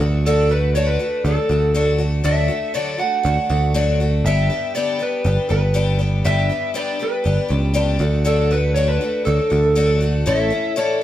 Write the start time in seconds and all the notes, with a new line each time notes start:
0.00 D2 A3 D4 F#4
0.26 D3 F#3 A3 D4 F#4 A4
0.49 A3 D4 F#4 B4
0.75 D3 F#3 A3 D4 F#4 C#5
0.87 B4
0.99 A3 D4 F#4
1.25 D2 F#3 A3 D4 F#4 A4
1.49 D2 A3 D4 F#4
1.74 D3 F#3 A3 D4 F#4
1.98 A3 D4 F#4
2.24 D2 D3 F#3 A3 D4 F#4 E5
2.48 A3 D4 F#4
2.74 D3 F#3 A3 D4 F#4 D5
2.98 A3 D4 F#4 F#5
3.23 D2 F#3 A3 D4 F#4
3.49 D2 A3 D4 F#4
3.74 D3 F#3 A3 D4 F#4
4.00 A3 D4 F#4
4.25 G1 G2 D3 G3 B3 D4 G4 E5
4.50 G3 B3 D4 G4
4.75 G2 D3 G3 B3 D4 G4 D5
4.99 G3 B3 D4 G4 B4
5.24 G1 G3 B3 D4 G4
5.49 G1 G3 B3 D4 G4 B4
5.74 G2 D3 G3 B3 D4 G4
5.99 G3 B3 D4 G4
6.24 G1 G2 D3 G3 B3 D4 G4 E5
6.49 G3 B3 D4 G4
6.74 G2 D3 G3 B3 D4 G4 D5
6.99 G3 B3 D4 G4 B4
7.24 G1 G3 B3 D4 G4
7.49 C#2 G3 B3 D4 G4
7.74 G2 D3 G3 B3 D4 G4
7.99 D2 A3 D4 F#4
8.25 D3 F#3 A3 D4 F#4 A4
8.51 A3 D4 F#4 B4
8.74 D3 F#3 A3 D4 F#4 C#5
8.88 B4
9.01 A3 D4 F#4
9.25 D2 F#3 A3 D4 F#4 A4
9.50 D2 A3 D4 F#4
9.75 D3 F#3 A3 D4 F#4
10.00 A3 D4 F#4
10.26 A1 A2 E3 A3 C#4 E4 A4 E5
10.50 A3 C#4 E4 A4
10.76 A2 E3 A3 C#4 E4 A4 D5